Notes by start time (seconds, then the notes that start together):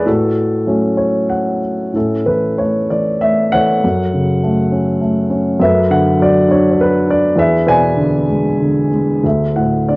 0.05 A2 F#4 A4
0.66 F#3 A3 C#4
0.97 C#5
1.29 F#5
1.94 A2 C#4 E4 A4
2.26 E3 B4
2.58 A3 C#5
2.90 E3 D5
3.21 A3 E5
3.52 E3 A4 C#5 F#5
3.84 F#2
4.14 C#3
4.43 A3
4.72 C#4
5.01 A3
5.30 C#4
5.60 F#2 A4 B4 E5
5.90 D3 F#5
6.19 F#3 D5
6.48 D4 C#5
6.72 C#5
6.78 F#3 B4
7.07 D4 D5
7.36 E2 G#4 B4 E5
7.67 B2 B4 D5 G#5
7.97 D3
8.29 G#3
8.61 D3
8.91 G#3
9.24 D2 A4 E5
9.56 A2 F#5
9.89 D3 D5